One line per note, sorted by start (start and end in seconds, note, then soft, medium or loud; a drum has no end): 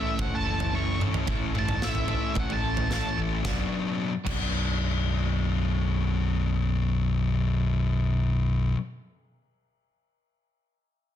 0.00 0.46 A2 medium
0.00 0.73 A2 medium
0.00 0.45 E3 medium
0.00 0.74 E3 medium
0.00 0.16 A3 medium
0.00 0.17 C#4 medium
0.00 0.18 E4 medium
0.00 0.18 A4 medium
0.00 0.18 E5 medium
0.18 1.04 F#1 medium
0.18 0.45 A3 medium
0.18 0.45 C#4 medium
0.18 0.44 E4 medium
0.18 0.44 A4 medium
0.18 0.35 F#5 medium
0.18 kick loud
0.18 floor tom medium
0.35 0.73 A5 medium
0.45 1.01 A2 medium
0.45 1.00 E3 medium
0.45 0.71 A3 medium
0.45 0.72 C#4 medium
0.45 0.72 E4 medium
0.45 0.73 A4 medium
0.60 floor tom medium
0.72 1.26 A2 medium
0.72 1.26 E3 medium
0.72 0.99 A3 medium
0.72 0.99 C#4 medium
0.72 0.98 E4 medium
0.72 0.97 A4 medium
0.72 1.00 C#6 medium
0.99 1.26 A3 soft
0.99 1.26 C#4 medium
0.99 1.26 E4 medium
0.99 1.27 A4 medium
0.99 mid tom medium
1.14 floor tom medium
1.26 2.13 A1 medium
1.26 1.81 A2 medium
1.26 1.81 E3 medium
1.26 1.55 A3 medium
1.26 1.54 C#4 medium
1.26 1.53 E4 medium
1.26 1.53 A4 medium
1.26 kick medium
1.26 floor tom medium
1.54 1.80 A3 soft
1.54 1.81 C#4 medium
1.54 1.81 E4 medium
1.54 1.82 A4 medium
1.54 mid tom medium
1.59 1.83 A5 medium
1.69 floor tom medium
1.69 mid tom medium
1.81 2.08 A3 medium
1.81 2.08 C#4 medium
1.81 2.07 E4 medium
1.81 2.07 A4 medium
1.81 2.36 E5 medium
1.81 snare medium
1.95 floor tom medium
2.08 2.63 A2 medium
2.08 2.63 E3 medium
2.08 2.34 A3 medium
2.08 2.35 C#4 medium
2.08 2.35 E4 medium
2.08 2.36 A4 medium
2.08 floor tom medium
2.35 3.00 A1 medium
2.35 2.63 A3 medium
2.35 2.62 C#4 medium
2.35 2.62 E4 medium
2.35 2.62 A4 medium
2.35 kick medium
2.35 floor tom medium
2.40 2.51 F#5 medium
2.50 2.91 A5 medium
2.50 floor tom medium
2.63 3.19 A2 medium
2.63 3.19 E3 medium
2.63 2.88 A3 medium
2.63 2.89 C#4 medium
2.63 2.90 E4 medium
2.63 2.90 A4 medium
2.77 floor tom medium
2.89 3.42 A2 medium
2.89 3.43 E3 medium
2.89 3.18 A3 medium
2.89 3.18 C#4 medium
2.89 3.16 E4 medium
2.89 3.16 A4 medium
2.89 snare medium
2.94 3.19 A5 loud
3.17 3.40 A1 medium
3.17 3.44 A3 soft
3.17 3.44 C#4 medium
3.17 3.43 E4 medium
3.17 3.43 A4 medium
3.44 3.60 B0 medium
3.44 4.13 B1 medium
3.44 4.13 F#2 medium
3.44 4.13 B2 medium
3.44 4.13 F#3 medium
3.44 4.13 D4 medium
3.44 kick medium
3.44 snare medium
4.24 8.72 B0 medium
4.24 8.74 B1 medium
4.24 8.75 F#2 medium
4.24 8.76 B2 medium
4.24 8.77 F#3 medium
4.24 8.78 D4 medium
4.24 kick medium
4.24 crash medium